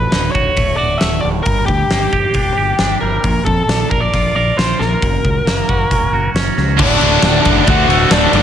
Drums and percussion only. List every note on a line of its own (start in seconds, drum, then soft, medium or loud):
0.12 snare loud
0.12 open hi-hat soft
0.35 kick medium
0.57 kick medium
0.57 open hi-hat soft
1.01 snare loud
1.01 open hi-hat soft
1.46 kick loud
1.46 open hi-hat soft
1.68 kick medium
1.91 snare medium
1.91 open hi-hat medium
2.13 kick medium
2.34 kick medium
2.34 open hi-hat soft
2.79 snare loud
2.79 open hi-hat soft
3.24 kick medium
3.24 open hi-hat soft
3.46 kick medium
3.69 snare medium
3.69 open hi-hat soft
3.91 kick medium
4.14 kick medium
4.14 open hi-hat soft
4.59 snare loud
4.59 open hi-hat soft
4.81 snare soft
5.02 kick loud
5.02 open hi-hat soft
5.25 kick medium
5.47 snare loud
5.47 open hi-hat medium
5.69 kick medium
5.91 kick medium
5.91 open hi-hat medium
6.36 snare loud
6.36 open hi-hat soft
6.58 snare soft
6.79 kick loud
6.79 crash loud
7.01 ride medium
7.22 snare loud
7.22 ride loud
7.45 kick medium
7.45 snare soft
7.45 ride medium
7.67 kick loud
7.67 ride loud
7.90 ride medium
8.11 snare loud
8.11 ride loud
8.33 ride medium